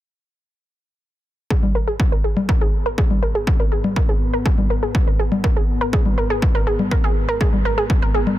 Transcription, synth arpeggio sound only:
1.50 1.62 G#4 medium
1.75 1.81 A#4 medium
1.88 1.99 G#4 medium
2.12 2.18 A#4 medium
2.24 2.36 G#4 medium
2.49 2.54 A#4 medium
2.61 2.73 G#4 medium
2.86 2.91 A#4 medium
2.98 3.10 G#4 medium
3.23 3.28 A#4 medium
3.35 3.47 G#4 medium
3.60 3.65 A#4 medium
3.72 3.84 G#4 medium
3.96 4.02 A#4 medium
4.09 4.20 G#4 medium
4.33 4.39 A#4 medium
4.46 4.57 G#4 medium
4.70 4.76 A#4 medium
4.83 4.94 G#4 medium
5.07 5.13 A#4 medium
5.19 5.31 G#4 medium
5.44 5.50 A#4 medium
5.56 5.68 G#4 medium
5.81 5.86 A#4 medium
5.93 6.05 G#4 medium
6.18 6.23 A#4 medium
6.30 6.42 G#4 medium
6.55 6.60 A#4 medium
6.67 6.79 G#4 medium
6.91 6.97 A#4 medium
7.04 7.15 G#4 medium
7.29 7.34 A#4 medium
7.41 7.53 G#4 medium
7.65 7.71 A#4 medium
7.78 7.89 G#4 medium
8.02 8.08 A#4 medium
8.14 8.26 G#4 medium

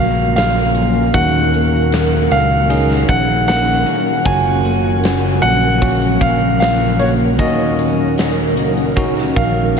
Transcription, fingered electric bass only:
0.00 1.10 A#1 medium
1.14 2.27 D#2 loud
2.31 3.05 C#2 medium
3.09 3.83 A#1 loud
4.25 5.38 F#1 loud
5.43 6.17 A#1 medium
6.21 7.39 A#1 medium
7.39 8.56 D#2 loud
8.56 9.32 C#2 medium
9.37 9.79 A#1 medium

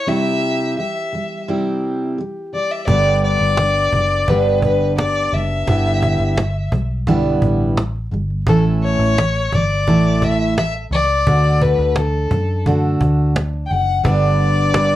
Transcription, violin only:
0.08 0.78 E5 medium
0.80 1.44 E5 medium
2.54 2.73 D5 medium
2.72 2.87 E5 medium
2.88 3.20 D5 medium
3.24 4.30 D5 loud
4.29 4.63 B4 medium
4.64 4.96 B4 medium
4.99 5.35 D5 medium
5.34 6.73 E5 medium
8.49 8.64 A4 medium
8.83 9.57 C#5 loud
9.55 10.25 D5 medium
10.24 10.58 E5 medium
10.58 10.73 E5 loud
10.93 11.63 D5 medium
11.61 12.00 B4 medium
11.98 12.67 A4 medium
13.66 13.72 G5 medium
13.71 14.06 F#5 medium
14.07 14.96 D5 medium

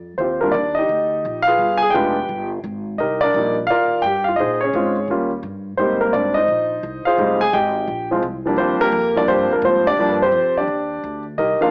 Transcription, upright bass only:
0.00 0.17 F2 medium
0.18 0.52 D#2 medium
0.54 0.87 D#2 medium
0.89 1.22 D2 medium
1.25 1.58 A#1 medium
1.58 1.92 G1 medium
1.95 2.28 F1 medium
2.29 2.63 G1 medium
2.64 2.97 G#1 medium
2.99 3.32 C2 medium
3.34 3.68 A#1 medium
3.69 4.03 D#2 medium
4.04 4.37 G2 medium
4.39 4.73 A#2 medium
4.73 5.07 G#2 medium
5.08 5.42 D#2 medium
5.43 5.77 G2 medium
5.78 6.12 G#2 medium
6.14 6.47 G#1 medium
6.48 6.82 A#1 medium
6.83 7.04 C2 medium
7.07 muted upright bass stroke soft
7.18 7.52 F1 medium
7.53 7.87 G#1 medium
7.87 8.22 A#1 medium
8.23 8.56 C2 medium
8.56 8.78 D#2 medium
8.80 muted upright bass stroke soft
8.92 9.26 F2 medium
9.27 9.49 G2 medium
9.50 muted upright bass stroke soft
9.62 9.96 G#2 medium
9.97 10.31 G2 medium
10.32 10.66 F2 medium
10.67 11.01 D#2 medium
11.03 11.37 D2 medium
11.38 11.59 C2 medium
11.61 muted upright bass stroke soft

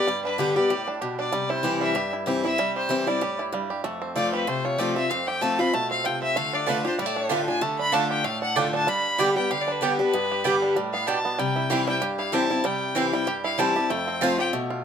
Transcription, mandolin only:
6.66 6.77 A3 loud
6.66 6.77 F4 medium
6.66 6.77 D5 loud
6.66 6.77 A5 medium
7.29 7.40 A3 medium
7.29 7.40 F4 loud
7.29 7.40 D5 loud
7.29 7.40 A5 loud
7.92 8.03 A3 loud
7.92 8.03 F4 loud
7.92 8.03 D5 medium
7.92 8.03 A5 loud
8.55 8.66 A3 medium
8.55 8.66 F4 loud
8.55 8.66 D5 loud
8.55 8.66 A5 loud
9.19 9.29 B3 medium
9.19 9.29 G4 loud
9.19 9.29 D5 medium
9.19 9.29 G5 loud
9.82 9.92 B3 medium
9.82 9.92 G4 medium
9.82 9.92 D5 medium
9.82 9.92 G5 loud
10.44 10.54 B3 loud
10.44 10.55 G4 medium
10.44 10.55 D5 medium
10.44 10.55 G5 loud
11.07 11.17 B3 medium
11.07 11.17 G4 loud
11.07 11.18 D5 medium
11.07 11.18 G5 loud
11.70 11.80 C4 medium
11.70 11.80 E4 loud
11.70 11.81 C5 loud
11.70 11.81 G5 loud
12.33 12.43 C4 medium
12.33 12.43 E4 medium
12.33 12.43 C5 loud
12.33 12.43 G5 loud
12.95 13.06 C4 medium
12.95 13.06 E4 medium
12.95 13.06 C5 loud
12.95 13.06 G5 medium
13.58 13.69 C4 loud
13.58 13.69 E4 loud
13.58 13.69 C5 loud
13.58 13.69 G5 loud
14.21 14.31 C4 loud
14.21 14.32 F4 medium
14.21 14.32 C5 loud
14.21 14.32 A5 loud

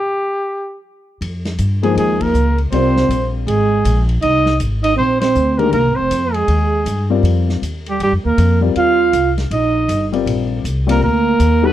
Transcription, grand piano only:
1.83 2.32 F3 medium
1.83 2.32 A#3 medium
1.83 2.32 D#4 medium
1.83 2.32 G#4 medium
1.83 2.32 C5 medium
2.72 3.77 G3 medium
2.72 3.77 C4 medium
2.72 3.78 F4 medium
2.72 3.78 A#4 medium
2.72 3.78 D5 medium
5.58 5.72 D#3 medium
5.58 5.72 G#3 medium
5.58 5.72 D4 medium
5.58 5.72 G4 medium
5.58 5.72 A#4 medium
7.10 7.59 G3 medium
7.10 7.59 C4 medium
7.10 7.59 F4 medium
7.10 7.59 A#4 medium
7.10 7.60 D5 medium
8.61 9.10 G3 medium
8.61 9.10 C4 medium
8.61 9.10 F4 medium
8.61 9.10 A#4 medium
8.61 9.11 D5 medium
10.12 10.61 G3 medium
10.12 10.61 C4 medium
10.12 10.61 F4 medium
10.12 10.62 A#4 medium
10.12 10.62 D5 medium
10.87 11.00 G3 medium
10.87 11.00 C4 medium
10.87 11.00 F4 medium
10.87 11.00 A#4 medium
10.87 11.00 D5 medium
11.62 11.73 G3 medium
11.62 11.73 B3 medium
11.62 11.73 D#4 medium
11.62 11.73 F#4 medium
11.62 11.73 A4 medium

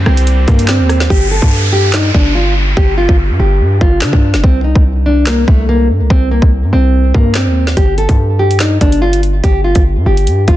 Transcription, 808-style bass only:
0.06 0.46 C2 loud
0.48 0.81 G2 loud
0.80 1.09 D#2 loud
1.10 1.41 G1 loud
1.42 2.12 G2 loud
2.14 2.74 G1 loud
2.77 3.08 G1 loud
3.09 3.31 G1 loud
3.30 3.39 G2 loud
3.39 3.62 G1 loud
3.60 3.80 G2 loud
3.81 4.03 G1 loud
4.02 4.12 D3 loud
4.13 4.35 G2 loud
4.34 4.43 F1 loud
4.44 4.74 C2 loud
4.75 5.45 C2 loud
5.48 5.91 C2 loud
5.89 6.02 G2 loud
6.00 6.10 C2 loud
6.10 6.41 C2 loud
6.42 6.64 C2 loud
6.63 6.72 G2 loud
6.73 7.13 C2 loud
7.14 7.48 G2 loud
7.46 7.75 D#2 loud
7.77 8.08 G1 loud
8.09 8.78 G2 loud
8.81 9.41 G1 loud
9.44 9.74 G1 loud
9.76 9.98 G1 loud
9.96 10.06 G2 loud
10.06 10.28 G1 loud
10.27 10.47 G2 loud
10.48 10.57 G1 loud

